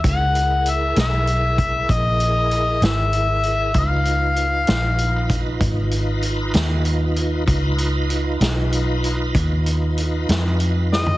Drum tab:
HH |x-x-x-x-x-x-x-x-x-x-x-x-|x-x-x-x-x-x-x-x-x-x-x-x-|x-x-x-x-x-x-x-x-x-x-x---|
SD |------o-----------o-----|------o-----------o-----|------o-----------o---o-|
FT |------------------------|------------------------|-----------------------o|
BD |o---------o-o-----------|o---------o-o-----------|o-----------o-----------|